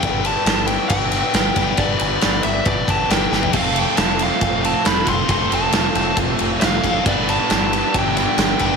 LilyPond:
<<
  \new Staff \with { instrumentName = "Lead electric guitar" } { \time 4/4 \key g \mixolydian \tempo 4 = 136 g''8 a''4 g''8 g''2 | d''8 d''4 e''8 d''8 a''8 g''4 | f''8 g''8 a''8 f''4 a''8 b''8 c'''8 | c'''8 a''4. r4 f''4 |
d''8 a''4. g''8 g''4. | }
  \new Staff \with { instrumentName = "Tonewheel organ" } { \time 4/4 \key g \mixolydian <b d' g' b'>1~ | <b d' g' b'>1 | <c' f' a' c''>1~ | <c' f' a' c''>1 |
<b d' g' b'>1 | }
  \new Staff \with { instrumentName = "Distorted electric guitar" } { \time 4/4 \key g \mixolydian r1 | r1 | <f a c' f' a'>1 | <f a c' f' a'>1 |
<g b d' b'>1 | }
  \new Staff \with { instrumentName = "Overdriven electric guitar" } { \time 4/4 \key g \mixolydian <g b d' b'>2.~ <g b d' b'>8 <g b d' b'>8 | <g b d' b'>2.~ <g b d' b'>8 <g b d' b'>8 | <f a c' f' a'>2.~ <f a c' f' a'>8 <f a c' f' a'>8 | <f a c' f' a'>2.~ <f a c' f' a'>8 <f a c' f' a'>8 |
<g b d' b'>2.~ <g b d' b'>8 <g b d' b'>8 | }
  \new Staff \with { instrumentName = "Picked electric bass" } { \clef bass \time 4/4 \key g \mixolydian g,,4 g,,4 g,,4 g,,8 g,,8 | g,,8 g,,8 g,,8 g,,8 g,,8 g,,8 g,,8 g,,8 | f,,4 f,,4 f,,4 f,,8 f,,8 | f,,8 f,,8 f,,8 f,,8 f,,8 f,,8 f,,8 fis,,8 |
g,,4 g,,4 g,,4 g,,8 g,,8 | }
  \new DrumStaff \with { instrumentName = "Drums" } \drummode { \time 4/4 <bd cymr>8 cymr8 <cymr sn>8 cymr8 <bd cymr>8 <cymr sn>8 <cymr sn>8 <bd cymr>8 | <bd cymr>8 cymr8 <cymr sn>8 cymr8 <bd cymr>8 <bd cymr>8 <cymr sn>8 sn16 tomfh16 | <cymc bd cymr>8 cymr8 <cymr sn>8 cymr8 <bd cymr>8 cymr8 <cymr sn>8 <bd cymr>8 | <bd cymr>8 cymr8 <cymr sn>8 cymr8 <bd cymr>8 cymr8 <cymr sn>8 <bd cymr>8 |
<bd cymr>8 cymr8 <cymr sn>8 cymr8 <bd cymr>8 <cymr sn>8 <cymr sn>8 <bd cymr>8 | }
>>